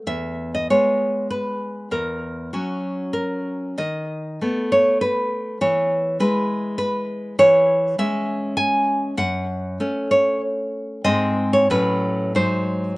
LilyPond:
\new Staff \with { instrumentName = "Nylon-string guitar" } { \time 3/4 \key e \major \tempo 4 = 98 << { e''8. dis''16 cis''4 b'4 | ais'4 fis'4 ais'4 | dis''4. cis''8 b'4 | cis''4 b'4 b'4 |
\key cis \minor cis''4 e''4 gis''4 | fis''4. cis''8 r4 | dis''8. cis''16 b'4 bis'4 | } \\ { e,4 <gis b>2 | e,4 <fis cis'>2 | dis4 <a b>2 | e4 <gis e'>2 |
e4 <gis cis'>2 | fis,4 <a cis'>2 | <gis, gis bis>4 <a, fis cis'>4 <gis, fis dis'>4 | } >> }